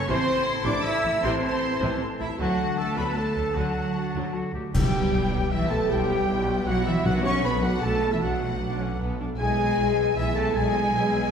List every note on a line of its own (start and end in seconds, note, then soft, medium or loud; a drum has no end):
0.00 0.44 A3 medium
0.00 0.64 A4 medium
0.07 0.16 A1 loud
0.07 1.21 A2 medium
0.07 0.25 C3 loud
0.07 0.25 E3 loud
0.07 0.64 C4 loud
0.07 0.66 C4 loud
0.07 2.08 E4 medium
0.07 0.65 C5 loud
0.07 2.36 A5 medium
0.07 0.66 C6 loud
0.07 0.65 C6 loud
0.28 1.41 E3 medium
0.45 1.60 A3 medium
0.65 0.73 A1 medium
0.65 0.83 C3 medium
0.65 0.83 E3 medium
0.65 0.73 D4 loud
0.65 0.85 D4 loud
0.65 1.02 A4 medium
0.65 0.84 D5 loud
0.65 0.87 D5 medium
0.65 0.85 D6 loud
0.84 1.22 E4 loud
0.84 1.23 E4 medium
0.84 1.99 C5 medium
0.84 1.23 E5 loud
0.84 1.24 E5 loud
0.84 1.23 E6 loud
1.04 1.12 A1 medium
1.04 1.12 E3 medium
1.04 1.12 A3 medium
1.22 1.31 A1 loud
1.22 2.40 A2 medium
1.22 1.41 C3 loud
1.22 1.41 E3 loud
1.22 1.41 C4 loud
1.22 1.42 C4 loud
1.22 1.33 C5 loud
1.22 1.43 C5 loud
1.22 1.31 C6 loud
1.22 1.41 C6 loud
1.42 2.40 E3 medium
1.42 1.99 C4 medium
1.42 2.00 C4 medium
1.42 2.00 C5 loud
1.42 2.00 C5 medium
1.42 1.99 C6 medium
1.62 2.77 A3 medium
1.81 1.89 A1 medium
1.81 1.99 C3 medium
1.81 1.99 E3 medium
1.81 2.18 A4 medium
2.00 2.40 C5 medium
2.19 2.28 A1 medium
2.19 2.37 E3 medium
2.19 2.27 E3 medium
2.19 2.28 E3 medium
2.19 2.27 A3 medium
2.19 2.28 E4 medium
2.19 2.96 A4 medium
2.19 2.38 E5 medium
2.38 2.46 D2 medium
2.38 2.57 D3 medium
2.38 3.55 D3 medium
2.38 2.77 F#3 medium
2.38 2.57 F#3 medium
2.38 2.77 F#3 medium
2.38 3.87 D4 medium
2.38 2.77 F#4 loud
2.38 2.80 F#4 medium
2.38 2.77 F#5 medium
2.38 4.51 A5 medium
2.59 3.75 D4 medium
2.76 2.85 A3 medium
2.76 2.96 A3 medium
2.76 3.94 A3 medium
2.76 2.96 A4 loud
2.76 2.96 A4 medium
2.76 2.97 A5 medium
2.95 3.04 D2 medium
2.95 3.15 D3 medium
2.95 3.15 F#3 medium
2.95 3.04 B3 medium
2.95 3.16 B3 medium
2.95 3.35 A4 medium
2.95 3.16 B4 medium
2.95 3.17 B4 medium
2.95 3.04 B5 medium
2.95 3.16 B5 medium
3.15 3.54 A3 medium
3.15 3.55 A3 medium
3.15 3.56 A4 medium
3.15 3.55 A4 medium
3.15 4.34 D5 soft
3.15 3.55 A5 medium
3.15 3.56 A5 medium
3.36 3.44 D2 medium
3.36 3.44 F#3 medium
3.36 3.44 A3 medium
3.54 3.63 D2 medium
3.54 3.74 D3 medium
3.54 4.76 D3 medium
3.54 4.33 F#3 medium
3.54 3.74 F#3 medium
3.54 4.34 F#4 medium
3.54 4.35 F#4 medium
3.54 4.34 F#5 medium
3.54 4.33 F#5 medium
3.76 4.76 D4 soft
3.95 4.76 A3 medium
3.95 4.36 D4 medium
4.15 4.23 D2 medium
4.15 4.33 D3 medium
4.15 4.33 F#3 medium
4.34 4.54 F#4 medium
4.34 4.76 D5 soft
4.54 4.62 D2 soft
4.54 4.62 F#3 medium
4.54 4.63 A3 soft
4.54 4.63 G4 medium
4.54 4.76 A4 soft
4.73 5.08 B1 medium
4.73 5.89 B2 medium
4.73 5.28 B2 medium
4.73 5.47 G3 medium
4.73 4.92 G3 medium
4.73 4.92 E4 medium
4.73 5.47 G4 loud
4.73 5.48 G4 medium
4.73 5.47 G5 medium
4.73 5.48 G5 medium
4.73 5.48 G5 loud
4.73 5.53 G5 medium
4.73 concert bass drum medium
4.73 crash medium
4.84 5.80 G3 medium
4.94 5.13 B3 medium
4.94 5.13 G4 medium
4.94 5.61 G4 medium
5.04 6.19 E5 medium
5.12 5.46 B1 medium
5.12 5.32 G3 medium
5.12 5.32 E4 medium
5.12 5.51 B4 medium
5.32 5.51 B3 medium
5.32 5.52 G4 medium
5.32 6.47 E6 medium
5.51 5.85 B1 medium
5.51 5.70 E3 medium
5.51 5.70 G3 medium
5.51 5.70 E4 medium
5.51 6.28 B4 medium
5.51 5.70 E5 medium
5.51 5.70 E5 loud
5.51 5.71 E5 medium
5.62 6.09 G4 medium
5.70 5.90 A3 medium
5.70 5.90 B3 medium
5.70 5.99 B3 medium
5.70 5.90 G4 medium
5.70 5.90 A4 loud
5.70 5.90 A4 medium
5.70 5.78 A5 medium
5.70 5.80 A5 medium
5.70 5.90 A5 medium
5.70 5.78 A5 medium
5.81 6.95 G3 medium
5.89 6.24 B1 medium
5.89 7.05 B2 medium
5.89 6.65 G3 medium
5.89 6.10 G3 medium
5.89 6.10 E4 medium
5.89 6.65 G4 loud
5.89 6.67 G4 loud
5.89 6.65 G5 medium
5.89 6.66 G5 medium
5.89 6.67 G5 medium
5.89 6.66 G5 medium
6.01 6.85 B3 medium
6.10 6.29 B3 medium
6.10 6.76 G4 medium
6.10 6.29 G4 medium
6.20 7.07 E5 medium
6.28 6.62 B1 loud
6.28 6.47 G3 medium
6.28 6.47 E4 medium
6.28 6.66 B4 medium
6.39 6.56 G5 medium
6.48 6.67 B3 medium
6.48 6.67 G4 medium
6.48 7.07 E6 medium
6.66 7.00 B1 loud
6.66 6.75 F#3 loud
6.66 6.87 G3 medium
6.66 6.87 E4 medium
6.66 6.85 F#4 loud
6.66 6.86 F#4 loud
6.66 9.77 B4 medium
6.66 6.75 F#5 loud
6.66 6.86 F#5 loud
6.66 6.74 F#5 loud
6.77 7.07 G4 medium
6.86 6.94 E3 medium
6.86 10.36 B3 medium
6.86 7.04 B3 medium
6.86 7.05 E4 loud
6.86 7.06 G4 medium
6.86 7.05 E5 loud
6.96 7.07 G3 medium
7.05 7.39 B1 loud
7.05 7.59 B2 loud
7.05 8.21 B2 medium
7.05 7.24 F#3 loud
7.05 7.23 B3 medium
7.05 7.23 D4 medium
7.05 7.24 F#4 loud
7.05 7.24 F#5 loud
7.05 7.13 F#5 loud
7.05 7.24 F#5 loud
7.05 7.14 F#5 loud
7.15 8.02 F#3 medium
7.24 7.44 A3 medium
7.24 7.44 B3 medium
7.24 7.43 C#4 loud
7.24 7.43 A4 medium
7.24 7.44 C#5 loud
7.24 7.43 C#6 loud
7.24 7.32 C#6 loud
7.24 7.44 C#6 loud
7.44 7.78 B1 medium
7.44 7.63 B3 medium
7.44 7.62 B3 medium
7.44 7.63 D4 medium
7.44 7.83 A4 medium
7.44 7.52 B4 medium
7.44 7.63 B4 loud
7.44 7.63 B5 medium
7.44 7.63 B5 loud
7.44 7.63 B5 medium
7.54 7.73 A5 medium
7.63 7.82 F#3 medium
7.63 7.83 A3 medium
7.63 7.82 B3 medium
7.63 7.82 F#4 medium
7.63 7.82 F#4 loud
7.63 7.82 F#5 loud
7.63 7.83 F#5 loud
7.63 7.72 F#5 medium
7.63 8.80 D6 medium
7.74 8.70 A5 medium
7.82 8.17 B1 medium
7.82 8.11 A3 loud
7.82 8.00 B3 medium
7.82 8.01 D4 medium
7.82 8.11 A4 loud
7.82 8.40 A4 medium
7.82 8.11 A5 loud
7.82 8.12 A5 medium
7.82 8.13 A5 medium
7.82 8.12 A5 loud
7.94 8.11 A3 medium
8.01 8.30 F#3 medium
8.01 8.21 A3 medium
8.01 8.20 B3 medium
8.12 8.15 E3 medium
8.12 9.09 A3 medium
8.12 8.22 E4 medium
8.12 8.23 E5 medium
8.12 8.16 E5 medium
8.12 8.21 E5 medium
8.12 8.22 E5 medium
8.20 8.55 B1 medium
8.20 9.38 B2 medium
8.20 8.98 F#3 medium
8.20 8.40 B3 medium
8.20 8.41 D4 medium
8.20 9.00 F#4 medium
8.20 8.98 F#5 medium
8.20 9.00 F#5 medium
8.20 8.99 F#5 medium
8.32 9.19 F#3 medium
8.41 8.61 A3 medium
8.41 8.61 B3 medium
8.41 8.60 A4 medium
8.52 9.41 D5 medium
8.60 8.95 B1 medium
8.60 8.79 D4 medium
8.60 8.99 A4 medium
8.72 8.90 A5 medium
8.81 9.00 C#4 medium
8.81 9.41 D6 medium
8.91 9.41 A5 medium
9.00 9.34 B1 medium
9.00 9.19 B3 medium
9.00 9.41 A4 medium
9.10 9.28 A3 medium
9.20 9.41 F#3 medium
9.20 9.28 D4 medium
9.30 9.41 A3 medium
9.39 9.73 B1 medium
9.39 10.54 B2 medium
9.39 10.13 G#3 medium
9.39 9.57 G#3 medium
9.39 9.57 E4 medium
9.39 10.13 G#4 loud
9.39 10.13 G#5 loud
9.49 10.45 G#3 medium
9.58 9.78 B3 medium
9.58 10.25 E4 medium
9.58 9.79 G#4 medium
9.68 9.86 E5 medium
9.77 10.12 B1 medium
9.77 9.98 G#3 medium
9.77 9.98 E4 medium
9.77 10.16 B4 medium
9.88 10.06 E5 medium
9.97 10.17 B3 medium
9.97 10.17 G#4 medium
9.97 11.12 E6 medium
10.07 10.83 E5 medium
10.16 10.51 B1 medium
10.16 10.36 E3 loud
10.16 10.35 G#3 medium
10.16 10.36 E4 loud
10.16 10.26 E4 medium
10.16 10.35 E4 medium
10.16 10.93 B4 medium
10.16 10.36 E5 medium
10.16 10.26 E5 medium
10.16 10.37 E5 loud
10.26 10.74 E4 medium
10.36 10.55 A3 medium
10.36 10.56 B3 medium
10.36 10.64 B3 medium
10.36 10.56 G#4 medium
10.36 10.55 A4 loud
10.36 10.55 A4 medium
10.36 10.58 A5 loud
10.36 10.55 A5 loud
10.36 10.56 A5 medium
10.36 10.56 A5 loud
10.46 11.31 G#3 medium
10.55 10.89 B1 medium
10.55 11.31 B2 medium
10.55 11.30 G#3 loud
10.55 10.75 G#3 medium
10.55 10.74 E4 medium
10.55 11.31 G#4 loud
10.55 11.30 G#5 medium
10.55 11.30 G#5 loud
10.55 11.31 G#5 loud
10.65 11.31 B3 medium
10.74 10.93 B3 medium
10.74 11.31 E4 medium
10.74 10.94 G#4 medium
10.84 11.02 E5 medium
10.93 11.27 B1 medium
10.93 11.12 G#3 medium
10.93 11.12 E4 medium
10.93 11.31 B4 medium
11.03 11.22 E5 medium
11.13 11.31 B3 medium
11.13 11.31 G#4 medium
11.13 11.31 E6 medium
11.23 11.31 E5 medium